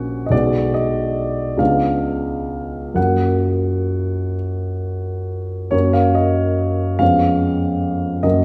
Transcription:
Already playing: A#1 A#3 C#4 F#4 F#5 G#5
0.26 B1 D#5
0.31 G#3 B3 F#4 D5
0.74 D#5
1.57 C#2 G#3 B3 D4 F5
2.94 F#2 F#3 A#3 C#4 F#5
5.71 F#2 F#3 A#3 C#4 C#5
5.93 F5
6.15 D#5
6.99 F2 G#3 B3 C#4 F5
8.23 F#2 F#3 A#3 C#4 D#5

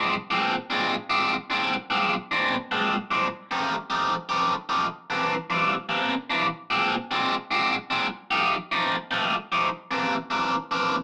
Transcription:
Already playing: A#2 G#3 C4 D4
0.30 A#2 G#3 C4 D4
0.70 A#2 G#3 C4 D4
1.10 A#2 G#3 C4 D4
1.50 A#2 G#3 C4 D4
1.90 A#2 G#3 C4 D4
2.31 A#2 G#3 C4 D4
2.71 A#2 G#3 C4 D4
3.11 A#2 G#3 C4 D4
3.51 F3 A3 D#4 G4
3.90 F3 A3 D#4 G4
4.29 F3 A3 D#4 G4
4.69 F3 A3 D#4 G4
5.10 C3 E3 A#3 D4
5.50 C3 E3 A#3 D4
5.89 C3 E3 A#3 D4
6.30 C3 E3 A#3 D4
6.70 A#2 G#3 C4 D4
7.11 A#2 G#3 C4 D4
7.51 A#2 G#3 C4 D4
7.90 A#2 G#3 C4 D4
8.31 F3 A3 D#4 G4
8.72 F3 A3 D#4 G4
9.11 F3 A3 D#4 G4
9.52 F3 A3 D#4 G4
9.91 C3 E3 A#3 D4
10.30 C3 E3 A#3 D4
10.71 C3 E3 A#3 D4

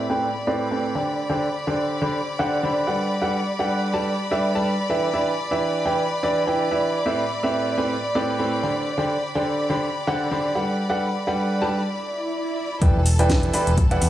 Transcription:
Already playing: D5 B5, downlifter
0.10 A2 C4 G4 A4 B4 G5
0.47 A2 C4 G4 A4 B4 D5
0.71 A2 C4 G4 A4 B4 G5
0.95 D3 D4 G4 A4 C5 G5
1.30 D3 D4 G4 A4 C5 G5
1.67 D3 D4 G4 A4 C5 G5
2.02 D3 D4 G4 A4 C5 B5
2.39 D3 D4 G4 A4 C5 F#5
2.63 D3 D4 G4 A4 C5 B5
2.87 G3 D4 G4 A4 B4 F#5
3.22 G3 D4 G4 A4 B4 F#5
3.59 G3 D4 G4 A4 B4 F#5
3.94 G3 D4 G4 A4 B4 A5
4.31 G3 D4 G4 A4 B4 E5
4.55 G3 D4 G4 A4 B4 A5
4.90 E3 D4 G4 A4 B4 E5
5.14 E3 D4 E4 G4 B4 E5
5.51 E3 D4 E4 G4 B4 E5
5.85 E3 D4 E4 G4 B4 G5
6.23 E3 D4 E4 G4 B4 D5
6.47 E3 D4 E4 G4 B4 G5
6.71 E3 D4 E4 G4 B4 E5
7.06 A2 C4 G4 A4 B4 E5
7.43 A2 C4 G4 A4 B4 E5
7.78 A2 C4 G4 A4 B4 G5
8.15 A2 C4 G4 A4 B4 D5
8.39 A2 C4 G4 A4 B4 G5
8.63 D3 D4 G4 A4 C5 G5
8.98 D3 D4 G4 A4 C5 G5
9.35 D3 D4 G4 A4 C5 G5
9.70 D3 D4 G4 A4 C5 B5
10.07 D3 D4 G4 A4 C5 F#5
10.31 D3 D4 G4 A4 C5 B5
10.55 G3 D4 G4 A4 B4 F#5
10.90 G3 D4 G4 A4 B4 F#5
11.27 G3 D4 G4 A4 B4 F#5
11.62 G3 D4 G4 A4 B4 A5
11.86 swell
12.82 E1 E3 E4 G4 A4 B4 D5 G5 A5, kick, closed hi-hat, shaker
12.95 E1
13.06 open hi-hat, shaker
13.19 E3 E4 G4 B4 D5 G5, closed hi-hat, shaker
13.30 kick, snare, closed hi-hat, shaker
13.43 closed hi-hat
13.54 E3 E4 G4 B4 D5 B5, open hi-hat, shaker
13.67 E1, closed hi-hat, shaker
13.78 kick, closed hi-hat, shaker
13.91 E3 E4 G4 B4 D5 F#5, closed hi-hat
14.02 E2, open hi-hat, shaker

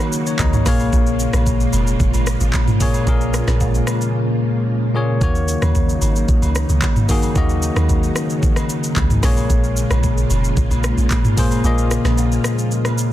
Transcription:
Already playing: C#3 D#3 A#3 D#4 F#4 C#5
0.00 shaker
0.13 shaker
0.26 C#5, shaker
0.39 C#2 D#5 A#5, kick, clap, high agogo, shaker
0.53 C#5, mid tom, shaker
0.66 A#1 A#2 G#3 A#3 F4 G#4 C#5 F5, kick, cross-stick, snare, open hi-hat, shaker
0.80 high agogo, shaker
0.93 A#1, kick, shaker
1.07 shaker
1.19 shaker
1.33 A#1, cross-stick, high agogo, shaker
1.46 kick, shaker
1.60 shaker
1.73 F1, high agogo, shaker
1.87 shaker
2.00 F#1, kick, shaker
2.14 G#1, high agogo, shaker
2.27 cross-stick, shaker
2.41 G#1, shaker
2.53 kick, clap, high agogo, shaker
2.68 mid tom, shaker
2.80 A#2 A#3 G#4 C#5, kick, open hi-hat, shaker
2.94 high agogo, shaker
3.07 A#1 A#2 A#3 G#4 A#4, kick, shaker
3.21 shaker
3.34 cross-stick, shaker
3.48 A#1, cross-stick, snare, high agogo, shaker
3.61 kick, low woodblock, shaker
3.75 shaker
3.87 cross-stick, high agogo, shaker
4.01 shaker
4.94 A#2 A#3 G#4 C#5
5.21 D#2 D#3 F#3 A#3 D#4 F#4 C#5, kick, shaker
5.35 shaker
5.48 shaker
5.62 D#2, cross-stick, high agogo, shaker
5.75 kick, shaker
5.89 shaker
6.02 G#1, high agogo, shaker
6.16 shaker
6.28 A#1, kick, shaker
6.42 C#2, high agogo, shaker
6.55 cross-stick, shaker
6.69 C#2, shaker
6.82 kick, clap, high agogo, shaker
6.96 mid tom, shaker
7.08 D#3 A#3 F#4 G#4, kick, open hi-hat, shaker
7.23 high agogo, shaker
7.35 D#2 D#3 G#3 A#3 F#4 D#5, kick, shaker
7.49 shaker
7.62 shaker
7.76 D#2, cross-stick, high agogo, shaker
7.89 kick, shaker
8.03 shaker
8.16 cross-stick, shaker
8.30 shaker
8.43 kick, shaker
8.56 cross-stick, high agogo, shaker
8.70 shaker
8.84 shaker
8.96 C#2, kick, clap, high agogo, shaker
9.10 mid tom, shaker
9.23 A#1 A#2 A#3 F4 G#4 C#5, kick, cross-stick, snare, open hi-hat, shaker
9.37 high agogo, shaker
9.50 A#1, kick, shaker
9.64 shaker
9.77 shaker
9.91 A#1, cross-stick, high agogo, shaker
10.03 kick, shaker
10.18 shaker
10.30 F1, high agogo, shaker
10.44 shaker
10.57 G#1, kick, shaker
10.71 A#1, high agogo, shaker
10.84 cross-stick, shaker
10.98 A#1, shaker
11.11 kick, clap, high agogo, shaker
11.25 mid tom, shaker
11.37 A#2 A#3 G#4 C5, kick, open hi-hat, shaker
11.51 high agogo, shaker
11.64 A#1 A#2 A#3 G#4 D#5, shaker
11.78 shaker
11.91 cross-stick, shaker
12.05 A#1, cross-stick, snare, high agogo, shaker
12.18 low woodblock, shaker
12.32 shaker
12.44 cross-stick, shaker
12.58 shaker
12.71 shaker
12.85 cross-stick, high agogo, shaker
12.98 shaker

